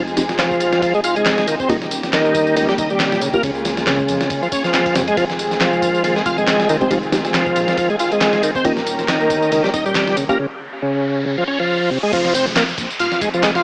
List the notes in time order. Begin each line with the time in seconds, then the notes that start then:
Already playing: F1 C3 F3 G#3 D#4 G#4
0.07 tambourine
0.17 G#3 C4 D#4 G4, snare, ride, tambourine
0.29 snare, tambourine
0.39 F3, snare, clap, ride, tambourine
0.51 kick, tambourine
0.60 A#1, ride, tambourine
0.73 snare, tambourine
0.82 F3, kick, ride, tambourine
0.94 G#3, tambourine
1.04 F4, ride, tambourine
1.16 G#3, ride, tambourine
1.26 snare, clap, ride, tambourine
1.38 snare, tambourine
1.48 D#3, ride, tambourine
1.60 C4, kick, tambourine
1.69 D#1 C#3 D#3 G3 A#3 C#4 F4 G4, kick, ride, tambourine
1.82 snare, tambourine
1.91 ride, tambourine
2.03 snare, tambourine
2.13 D#3, snare, clap, ride, tambourine
2.25 tambourine
2.35 G1, kick, ride, tambourine
2.47 tambourine
2.56 C#2 D#3, ride, tambourine
2.69 G3, snare, tambourine
2.78 D#1 D#4, kick, ride, tambourine
2.90 G3, tambourine
3.00 snare, clap, ride, tambourine
3.12 snare, tambourine
3.21 C#3, ride, tambourine
3.33 A#3 C#4 F4 G4, kick, tambourine
3.43 C#2 C#3 G#3 F4 G#4, kick, ride, tambourine
3.55 tambourine
3.65 snare, ride, tambourine
3.77 snare, tambourine
3.87 C#3, snare, clap, ride, tambourine
3.99 kick, tambourine
4.08 F2, ride, tambourine
4.20 snare, tambourine
4.30 C#3, kick, ride, tambourine
4.43 F3, tambourine
4.52 C#4, kick, ride, tambourine
4.64 F3, snare, tambourine
4.74 snare, clap, ride, tambourine
4.86 kick, ride, tambourine
4.95 F2 C3, snare, ride, tambourine
5.08 G#3, ride, tambourine
5.17 F1 D#3 F3 C4 F4, kick, ride, tambourine
5.29 snare, tambourine
5.39 ride, tambourine
5.51 snare, tambourine
5.61 F3, snare, clap, ride, tambourine
5.73 tambourine
5.82 A#1, kick, ride, tambourine
5.95 tambourine
6.04 D#1 F3, ride, tambourine
6.16 G#3, snare, tambourine
6.26 F1 F4, kick, ride, tambourine
6.38 G#3, tambourine
6.47 snare, clap, ride, tambourine
6.60 snare, tambourine
6.69 D#3, ride, tambourine
6.81 G#3 C4 D#4 G4, kick, tambourine
6.90 F1 F3 G#3 C4 D#4 G4, kick, ride, tambourine
7.03 tambourine
7.12 G#3 C4 D#4 G4, snare, ride, tambourine
7.25 snare, tambourine
7.34 F3, snare, clap, ride, tambourine
7.46 kick, tambourine
7.56 A#1, ride, tambourine
7.68 snare, tambourine
7.77 F3, kick, ride, tambourine
7.90 G#3, tambourine
7.99 F4, ride, tambourine
8.11 G#3, ride, tambourine
8.21 snare, clap, ride, tambourine
8.33 snare, tambourine
8.43 D#3, ride, tambourine
8.55 C4, kick, tambourine
8.65 D#1 D#3 A#3 C#4 F4 G4 A#4, kick, ride, tambourine, riser
8.77 snare, tambourine
8.87 ride, tambourine
8.99 snare, tambourine
9.08 D#3, snare, clap, ride, tambourine
9.21 tambourine
9.30 G1, kick, ride, tambourine
9.42 tambourine
9.52 C#2 D#3, ride, tambourine
9.64 G3, snare, tambourine
9.74 D#1 D#4, kick, ride, tambourine
9.86 G3, tambourine
9.95 snare, clap, ride, tambourine
10.07 snare, tambourine
10.17 C#3, ride, tambourine
10.29 A#3 C#4 F4 G4, kick, tambourine
10.39 C#3
10.82 C#3
11.26 C#3
11.38 F3
11.48 C#4
11.60 F3
11.91 C3
12.03 G#3
12.13 F1 F3, kick, crash, ride, tambourine, downlifter
12.25 snare, tambourine
12.34 C4, ride, tambourine
12.46 snare, tambourine
12.56 A#3, snare, clap, ride, tambourine
12.69 tambourine
12.78 A#1, kick, ride, tambourine
12.90 tambourine
12.99 D#1 F4, ride, tambourine
13.12 snare, tambourine
13.21 F1 G#3, kick, ride, tambourine
13.34 F3, tambourine
13.43 G#3, snare, clap, ride, tambourine
13.55 F4, snare, tambourine